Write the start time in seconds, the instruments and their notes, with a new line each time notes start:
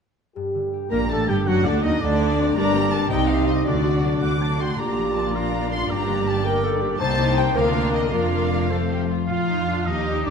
0.35 harp G2, french horn section G4
0.54 harp D3
0.73 harp G4
0.91 double bass section A#1, cello section A#2, viola section A#3, french horn section D4, clarinet A#4, violin section A#4 A#5, harp D5, oboe A#5
1.09 double bass section A1, cello section A2, viola section A3, harp G4, violin section A4 A5, clarinet A4, oboe A5
1.28 double bass section G1, cello section G2, viola section G3, harp D4, clarinet G4, violin section G4 G5, oboe G5
1.46 double bass section F#1, cello section F#2, harp D3, viola section F#3, violin section F#4 F#5, clarinet F#4, oboe F#5
1.64 cello section D2, double bass section D2, viola section D3, harp A3, clarinet D4, violin section D4 D5, oboe D5
1.82 cello section D#2, double bass section D#2, viola section D#3, violin section D#4 D#5, clarinet D#4, harp F#4, oboe D#5
2.01 cello section D2, double bass section D2, viola section D3, french horn section D4, violin section D4 D5, clarinet D4, oboe D5, harp D5
2.20 harp F#4
2.37 harp C4
2.55 double bass section G1, cello section G2, harp G2, viola section G3 D4, clarinet G4, violin section A#4 D5 A#5, oboe D5
2.74 viola section A#3, harp A#3, violin section G4 A#4
2.91 viola section G3 D4, harp G4 D5, violin section A#4 D5 A5
3.09 double bass section C2, harp C3, cello section C3, viola section G3 D#4, french horn section D#4, violin section D#4 C5 G5, clarinet G4
3.13 oboe D#5
3.28 viola section C4, harp C4, violin section G4 D#5 F5
3.47 viola section G3 D#4, violin section D#4 C5 D#5, harp G4 D#5
3.65 double bass section D2, cello section D3, harp D3, viola section F#3 D4, french horn section D4, clarinet F#4, violin section A4 D5, oboe D5
3.84 viola section A3 F#4, harp D4, violin section F#4 F#5
4.03 viola section F#3 D4, harp F#4, violin section A4 D5
4.21 double bass section D2, cello section D3, viola section A3 F#4, violin section F#4 F#5 D6, harp D5, oboe F#5
4.40 viola section F#3 D4, harp F#4, violin section A4 D5, oboe A5
4.58 viola section A3 F#4, harp A3, violin section F#4 F#5 C6, oboe G5
4.78 double bass section A#1, cello section A#2, harp A#2, viola section A#3 D4, violin section F4 D5 A#5, clarinet F4, french horn section G4, oboe D5
4.98 harp F3
5.16 harp F4, violin section A5
5.34 french horn section F4, harp D5, oboe F5, violin section A#5
5.53 harp F4
5.72 harp A#3, violin section C6
5.90 double bass section G1, harp G2, cello section G2, violin section G4 A#5, clarinet G4, french horn section G4, oboe D5
6.08 harp D3
6.26 harp G4, violin section A5
6.44 clarinet A#4, french horn section A#4, oboe D5, harp D5, violin section G5
6.64 harp G4, clarinet A4
6.81 harp A#3, clarinet G4
7.00 double bass section C2, cello section C2, harp C3, viola section A#3 D#4, violin section G4 C5 A5, clarinet C5, french horn section C5, oboe C5
7.19 harp A#3
7.37 harp G4 D#5, violin section G5
7.55 double bass section D2, cello section D2, harp D3, viola section A#3 D4, violin section F4 A#4 F5, clarinet A#4, french horn section A#4, oboe D5
7.75 harp A#3
7.93 harp F4 D5, violin section D#5
8.11 double bass section F1, cello section F2, harp F3, viola section A#3 D4, french horn section F4, violin section F4 A#4 F5, clarinet A#4, oboe D5
8.31 harp F4
8.50 harp F4 D5
8.69 harp F3, viola section A3 C4, clarinet A4, violin section A4, oboe C5
8.89 harp F4, violin section G4
9.08 harp F4 C5, violin section F4
9.27 double bass section F2, harp A#2, viola section F4, cello section F4, violin section F4 F5, oboe F5
9.47 harp F3, viola section D#4
9.68 viola section D4
9.86 double bass section D#2, cello section D#4, violin section D#4 D#5, viola section G4, harp A#4, oboe D#5
10.06 harp D5
10.25 double bass section D2, harp A#3, cello section D4, violin section D4 D5, oboe D5